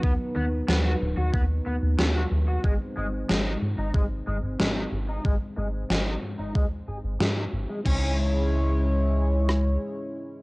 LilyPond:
<<
  \new Staff \with { instrumentName = "Analog synth pad" } { \time 4/4 \key cis \minor \tempo 4 = 92 << { <fis b b'>1 | <gis bis bis'>1~ | <gis bis bis'>1 | <gis cis' e' cis''>1 | } \\ { dis'1~ | dis'1~ | dis'1 | r1 | } >> }
  \new Staff \with { instrumentName = "Overdriven electric guitar" } { \time 4/4 \key cis \minor b16 r16 b16 r16 b16 fis'16 r16 fis'16 b16 r16 b16 r16 b16 fis'16 r16 fis'16 | gis16 r16 gis16 r16 gis16 dis'16 r16 dis'16 gis16 r16 gis16 r16 gis16 dis'16 r16 dis'16 | gis16 r16 gis16 r16 gis16 dis'16 r16 dis'16 gis16 r16 gis'16 r16 gis16 dis'16 r16 gis16 | cis'8 r2. r8 | }
  \new Staff \with { instrumentName = "Analog synth bass" } { \clef bass \time 4/4 \key cis \minor dis,16 r16 dis,8 dis,8 dis,,16 dis,16 dis,8 dis,16 dis,16 dis,8 dis,8 | gis,,16 r16 gis,,8 gis,,8 gis,16 gis,,16 gis,,8 gis,,16 gis,,16 gis,,8 gis,,8 | gis,,16 r16 gis,,8 gis,,8 gis,16 gis,,16 dis,8 gis,,16 gis,,16 gis,8 gis,,16 r16 | cis,2. r4 | }
  \new DrumStaff \with { instrumentName = "Drums" } \drummode { \time 4/4 bd4 sn4 bd4 sn4 | bd4 sn4 bd4 sn4 | bd4 sn4 bd4 sn4 | <cymc bd>4 r4 r8 ss8 r4 | }
>>